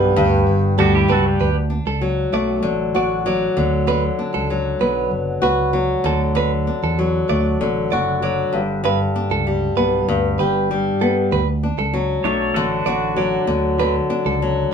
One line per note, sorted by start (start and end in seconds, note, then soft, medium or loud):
0.00 0.11 B1 loud
0.00 0.15 G2 medium
0.00 1.19 D3 medium
0.00 0.77 G3 medium
0.00 1.47 B3 medium
0.00 1.08 D4 medium
0.00 0.44 B4 medium
0.16 0.42 D2 medium
0.16 1.47 G2 medium
0.47 0.73 G1 medium
0.78 1.04 D2 medium
0.78 1.47 G3 medium
0.78 0.95 D4 medium
0.78 0.94 F#4 medium
0.78 0.94 A4 medium
0.95 1.10 E4 medium
0.95 1.09 G4 medium
1.08 1.35 C#2 medium
1.08 1.69 D4 medium
1.08 1.26 F#4 medium
1.08 1.26 A4 medium
1.08 1.25 B4 medium
1.28 1.56 G4 medium
1.28 1.56 B4 medium
1.40 1.78 D2 medium
1.40 1.56 B4 medium
1.70 4.18 D4 soft
1.86 2.25 C#2 medium
1.86 2.02 A4 medium
2.01 3.25 F#3 medium
2.33 2.59 B1 loud
2.33 3.63 A3 medium
2.33 2.63 D5 medium
2.63 2.90 A1 medium
2.63 3.56 D3 medium
2.95 3.47 A1 medium
2.95 5.41 F#4 medium
2.95 3.25 D5 medium
3.26 4.50 F#3 medium
3.26 3.70 D5 medium
3.57 4.08 D2 medium
3.57 3.87 D3 medium
3.87 6.04 D3 medium
3.87 4.03 B4 medium
4.19 6.67 D4 medium
4.34 4.73 C#2 medium
4.34 4.49 A4 medium
4.50 5.73 F#3 medium
4.81 5.07 B1 medium
4.81 6.11 B3 medium
4.81 5.11 B4 medium
5.11 5.37 F#1 medium
5.42 5.94 C#2 medium
5.42 7.92 F#4 medium
5.42 5.73 B4 medium
5.73 6.98 F#3 medium
6.04 6.68 D2 medium
6.04 6.35 D3 medium
6.04 6.20 A4 medium
6.35 7.60 D3 medium
6.35 6.51 B4 medium
6.67 9.15 D4 soft
6.83 7.21 E2 medium
6.83 6.98 A4 medium
6.99 8.21 F#3 medium
7.29 7.55 D2 medium
7.29 8.59 A3 medium
7.29 7.59 D5 medium
7.61 7.86 A1 medium
7.61 11.11 D3 medium
7.92 8.43 F#1 medium
7.92 8.60 F#4 medium
7.92 8.21 D5 medium
8.22 8.59 F#3 medium
8.22 8.66 D5 medium
8.53 9.04 G1 medium
8.53 8.82 G2 medium
8.84 10.07 G2 medium
8.84 9.00 B4 loud
9.16 11.63 D4 medium
9.30 9.69 C#2 medium
9.30 9.46 A4 medium
9.47 10.70 G3 medium
9.77 10.03 B1 medium
9.77 11.00 B3 medium
9.77 10.06 B4 medium
10.08 10.34 D2 medium
10.08 11.38 G2 medium
10.39 10.90 G1 medium
10.39 11.39 G4 medium
10.39 10.69 B4 medium
10.71 11.38 G3 medium
11.01 11.38 B3 medium
11.01 11.16 A4 medium
11.32 11.70 D2 medium
11.32 11.47 B4 medium
11.63 14.10 D4 medium
11.78 12.16 C#2 medium
11.78 11.93 A4 medium
11.94 13.16 F#3 medium
12.24 12.50 B1 medium
12.24 13.55 A3 medium
12.24 12.54 D4 medium
12.24 12.53 A4 medium
12.24 12.54 C#5 medium
12.54 12.81 A1 medium
12.54 13.47 D3 medium
12.54 12.70 F#4 medium
12.54 12.70 A4 medium
12.71 13.45 D4 medium
12.71 13.45 F#4 medium
12.86 13.37 A1 medium
12.86 14.74 F#4 medium
12.86 13.16 D5 medium
13.16 14.42 F#3 medium
13.16 13.61 D5 medium
13.47 13.99 D2 medium
13.47 13.79 D3 medium
13.79 14.74 D3 medium
13.79 13.94 B4 medium
14.10 14.74 D4 medium
14.25 14.64 C#2 medium
14.25 14.41 A4 medium
14.42 14.74 F#3 medium